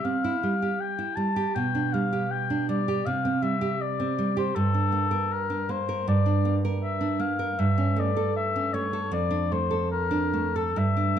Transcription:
Already playing: G4
0.05 C4 F5
0.24 E4
0.43 G3
0.62 G4
0.80 G5
0.99 E4
1.16 G3 A5
1.36 G4
1.55 B2 G5
1.75 D4
1.93 G3 F5
2.13 G4
2.31 G5
2.50 D4
2.69 G3 D5
2.88 G4
3.06 C3 F5
3.25 C4
3.42 G3 E5
3.61 G4
3.81 D5
4.00 C4
4.18 G3
4.37 G4 C5
4.55 G2 A4
4.74 D4
4.92 A#3
5.11 A#4
5.32 A#4
5.50 D4
5.69 A#3 C5
5.89 A#4
6.08 G2 D5
6.26 D4
6.45 A#3
6.65 A#4
6.83 E5
7.01 D4
7.20 A#3 F5
7.39 A#4
7.59 G2 E5
7.78 C#4
7.96 A3 D5
8.17 A4
8.36 E5
8.56 C#4
8.73 A3 C#5
8.93 A4
9.12 F2 D5
9.31 D4
9.52 A3 C5
9.71 A4
9.91 A#4
10.11 D4
10.33 A3
10.56 A4
10.76 G2 E5
10.97 D4

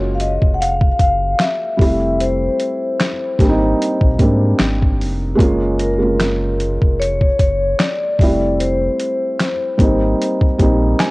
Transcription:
Already playing: F#1 G#3 A#3 C#4 F4 F#4 C#5
0.15 F5
0.20 D#5, closed hi-hat
0.42 F1, kick
0.54 F#5
0.61 F5, closed hi-hat
0.81 kick
0.99 F#1 F5, kick, closed hi-hat
1.39 E5, finger snap, snare, closed hi-hat
1.77 F1 G3 A3 C4, kick
1.81 E4, open hi-hat
2.20 C5, closed hi-hat
2.60 closed hi-hat
3.00 finger snap, snare, closed hi-hat
3.39 G#1 G3 A#3 C4 D4, kick, snare, closed hi-hat
3.49 D#4
3.82 closed hi-hat
4.01 A#1, kick
4.18 G#2 G3 A#3 C4, kick, closed hi-hat
4.23 D4
4.59 G#1, finger snap, snare, closed hi-hat
4.82 kick
5.00 F1, open hi-hat
5.35 G#3 A#3 C#4 F4, kick
5.39 F#1, closed hi-hat
5.79 A#4, closed hi-hat
5.98 G#3 A#3 C#4
6.02 F4
6.20 finger snap, snare, closed hi-hat
6.60 closed hi-hat
6.82 F1, kick
7.00 C#5, closed hi-hat
7.21 kick
7.39 F#1 C#5, kick, closed hi-hat
7.79 D5, finger snap, snare, closed hi-hat
8.19 F1 G3 A3 C4, kick, open hi-hat
8.23 E4
8.60 C5, closed hi-hat
8.99 closed hi-hat
9.39 finger snap, snare, closed hi-hat
9.78 G#1 G3 A#3 C4, kick, closed hi-hat
9.82 D#4
10.22 closed hi-hat
10.41 kick
10.58 A#1 G3 A#3 C4, kick, closed hi-hat
10.63 D#4
10.99 G#5, finger snap, snare, closed hi-hat

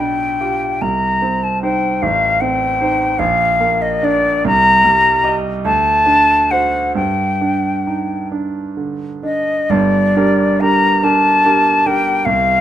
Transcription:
Already playing: B1
0.00 D4 G5
0.40 F4 G4
0.81 C2 A#5
1.22 C4
1.43 A5
1.63 D#4 C5 G5
2.02 A1 F5
2.41 C4 G5
2.81 D#4 C5
3.19 A#1 F5
3.60 A#3
3.82 D#5
4.03 D4 D5
4.45 C2 A#5
4.84 G3
5.24 G4 D#5
5.65 D2 A5
6.06 D4
6.51 F#4 C5 F#5
6.95 G2 G5
7.41 D4
7.87 D#4
8.32 D4
8.77 D3
9.23 D4 D#5
9.70 G1 G2 D5
10.16 D4 G4 A#4
10.61 D4 G4 A#4 A#5
11.03 D4 G4 A#4 A5
11.45 D4 G4 A#4
11.86 D4 G4 A#4 G5
12.25 C2 F5

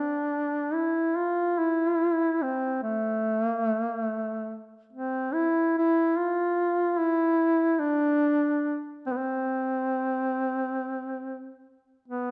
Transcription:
Already playing: D4
0.74 E4
1.17 F4
1.58 E4
2.42 C4
2.83 A3
3.46 A#3
3.64 A3
3.82 A#3
3.99 A3
4.93 C4
5.34 E4
5.78 E4
6.17 F4
6.98 E4
7.80 D4
9.07 C4
9.12 B3
9.17 C4
12.08 B3

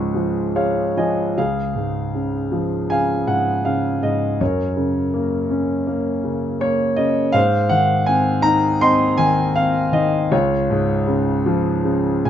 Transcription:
Already playing: C#2 G#2 C#3 F3 G#3 C#5 F5 G#5 C#6
0.15 F3
0.56 G#3 C#5 F5
0.97 F3 D#5 G#5
1.37 C#2 G#4 F5
1.75 G#2
2.14 C#3
2.52 F3
2.90 C#3 F5 G#5
3.27 G#2 F#5
3.65 C#3 F5
4.03 G#2 D#5
4.41 F#2 A#4 C#5
4.76 C#3
5.14 A#3
5.50 C#4
5.87 A#3
6.24 C#3
6.60 A#3 C#5
6.96 C#3 D#5
7.32 G#2 C5 F5
7.69 D#3 F#5
8.06 C4 G#5
8.42 D#4 A#5
8.81 C4 D#5 C6
9.18 D#3 G#5
9.55 C4 F5
9.92 D#3 D#5
10.31 C#2 F4 C#5
10.70 G#2
11.07 C#3
11.46 F3
11.84 C#3
12.25 G#2 G#5

